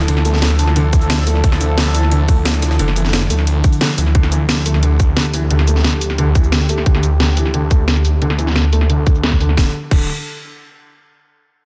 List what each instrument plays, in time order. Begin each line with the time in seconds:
Already playing: analog synth pad D3 F3 E4 A4
0.08 detuned saw bass D2, felt piano D3, closed hi-hat
0.17 snare
0.25 felt piano A3, closed hi-hat, shaker
0.34 snare
0.42 snare, closed hi-hat
0.51 snare
0.59 felt piano D3, closed hi-hat, open hi-hat, shaker
0.68 snare
0.76 felt piano D3, closed hi-hat
0.93 felt piano E3, kick, closed hi-hat, shaker
1.01 closed hi-hat, shaker
1.10 felt piano D3, snare, closed hi-hat
1.18 shaker
1.27 felt piano A3, closed hi-hat, open hi-hat, shaker
1.35 snare
1.44 detuned saw bass D2, kick, closed hi-hat
1.52 snare
1.61 felt piano D3, closed hi-hat, shaker
1.78 felt piano D3, snare, closed hi-hat
1.86 snare
1.95 felt piano E3, closed hi-hat, open hi-hat, shaker
2.03 snare
2.11 felt piano D3, closed hi-hat
2.28 felt piano A3, kick, closed hi-hat, open hi-hat, shaker
2.45 snare, closed hi-hat
2.54 snare, shaker
2.62 felt piano D3, snare, closed hi-hat, open hi-hat, shaker
2.71 snare
2.79 detuned saw bass F1, felt piano D3, closed hi-hat
2.88 snare
2.96 felt piano E3, closed hi-hat, shaker
3.05 snare
3.13 felt piano D3, snare, closed hi-hat
3.22 snare
3.30 detuned saw bass D2, felt piano A3, closed hi-hat, open hi-hat, shaker
3.39 snare
3.47 closed hi-hat
3.64 felt piano D3, kick, closed hi-hat, shaker
3.73 closed hi-hat, shaker
3.81 felt piano D3, snare, closed hi-hat
3.89 shaker
3.98 detuned saw bass D2, felt piano E3, closed hi-hat, open hi-hat, shaker
4.06 snare
4.15 detuned saw bass D2, felt piano D3, analog synth pad G4, kick, closed hi-hat
4.23 snare
4.32 felt piano E3, closed hi-hat, shaker
4.49 felt piano D3, snare, closed hi-hat
4.66 felt piano A3, open hi-hat, shaker
4.74 snare
4.83 felt piano D3, closed hi-hat
5.00 kick, closed hi-hat, shaker
5.17 felt piano D3, snare, closed hi-hat
5.25 snare, shaker
5.34 felt piano E3, open hi-hat, shaker
5.50 detuned saw bass D2, felt piano D3, closed hi-hat
5.59 snare
5.67 felt piano A3, closed hi-hat, shaker
5.76 snare
5.84 felt piano D3, snare, closed hi-hat
5.93 snare
6.01 open hi-hat, shaker
6.10 snare
6.18 felt piano D3, closed hi-hat
6.35 felt piano E3, kick, closed hi-hat, shaker
6.44 shaker
6.52 felt piano D3, snare, closed hi-hat
6.61 shaker
6.69 felt piano A3, open hi-hat, shaker
6.78 snare
6.86 detuned saw bass D2, felt piano D3, kick, closed hi-hat
6.95 snare
7.03 closed hi-hat, shaker
7.20 felt piano D3, snare, closed hi-hat
7.37 felt piano E3, open hi-hat, shaker
7.45 snare
7.54 felt piano D3, closed hi-hat
7.71 felt piano A3, kick, closed hi-hat, shaker
7.88 felt piano D3, snare, closed hi-hat
7.96 snare, shaker
8.05 open hi-hat, shaker
8.22 detuned saw bass D2, felt piano D3, closed hi-hat
8.30 snare
8.39 felt piano E3, closed hi-hat, shaker
8.47 snare
8.56 felt piano D3, snare, closed hi-hat
8.64 snare
8.73 felt piano A3, open hi-hat, shaker
8.81 snare
8.90 felt piano D3, closed hi-hat
9.07 felt piano D3, kick, closed hi-hat, shaker
9.15 shaker
9.23 felt piano A3, snare, closed hi-hat
9.32 kick, shaker
9.40 felt piano D3, open hi-hat, shaker
9.49 snare
9.57 detuned saw bass D1, felt piano D3, kick, snare
9.91 detuned saw bass D1, felt piano D3, kick, crash